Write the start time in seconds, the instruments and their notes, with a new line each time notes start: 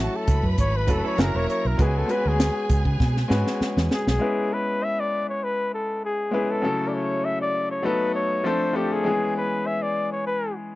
Already playing: grand piano F#3 A3 C#4 E4 A4, violin section A4 A5
0.00 flugelhorn F#4
0.16 flugelhorn A4
0.27 fingered electric bass C#2, violin section B4 B5, kick, closed hi-hat
0.43 fingered electric bass F#2, kick
0.58 fingered electric bass G#1, flugelhorn C#5, kick, closed hi-hat
0.76 flugelhorn B4
0.87 fingered electric bass F#1, grand piano F#3 A3 C#4 E4 A4, clean electric guitar F#4 B4, flugelhorn A4, kick, closed hi-hat
1.05 clean electric guitar E4 A4, flugelhorn C#5
1.17 fingered electric bass F#1, grand piano F#3 A#3 C#4 E4 G#4, clean electric guitar C#4 F#4, violin section A#4 A#5, flugelhorn A#4, snare, closed hi-hat
1.26 grand piano A#4
1.35 fingered electric bass E1, clean electric guitar A#3 E4, flugelhorn C#5
1.50 flugelhorn C#5, closed hi-hat
1.65 fingered electric bass B1, flugelhorn A#4
1.78 fingered electric bass C#2, grand piano G#3 B3 C#4 F#4 B4, violin section G#4 G#5, flugelhorn G#4, kick, closed hi-hat
1.98 flugelhorn A4
2.07 grand piano G#3 B3 C#4 F#4 B4, closed hi-hat
2.12 flugelhorn B4
2.25 fingered electric bass D2, flugelhorn G#4
2.40 snare, closed hi-hat
2.69 fingered electric bass C#2, kick, closed hi-hat
2.85 fingered electric bass C#3, kick
3.00 fingered electric bass B2, kick, snare
3.17 snare
3.28 fingered electric bass G#2, grand piano G#3 B3 C#4 F#4 B4, snare
3.47 snare
3.61 muted fingered electric bass stroke, snare
3.77 fingered electric bass E2, snare
3.91 flugelhorn G#4, snare
4.07 fingered electric bass B1, flugelhorn G#4, snare
4.19 grand piano G#3 B3 C#4 E4 B4
4.53 flugelhorn B4
4.84 flugelhorn E5
5.00 flugelhorn D5
5.29 flugelhorn C#5
5.44 flugelhorn B4
5.75 flugelhorn A4
6.05 flugelhorn G#4
6.31 grand piano G#3 B3 C#4 E4 B4, flugelhorn G#4
6.51 flugelhorn A4
6.62 grand piano C#3 F#3 A3 C#4 E4 A4
6.88 flugelhorn D5
6.94 flugelhorn C#5
7.25 flugelhorn E5
7.42 flugelhorn D5
7.71 flugelhorn C#5
7.83 grand piano F#3 A3 B3 D#4 A4, flugelhorn B4
8.15 flugelhorn C#5
8.44 grand piano F3 A3 C4 D4 A4, flugelhorn C5
8.73 grand piano F3 A3 C4 D4 A4, flugelhorn G4
8.92 flugelhorn G#4
9.03 grand piano E3 G#3 B3 C#4 G#4
9.37 flugelhorn B4
9.66 flugelhorn E5
9.82 flugelhorn D5
10.12 flugelhorn C#5
10.27 flugelhorn B4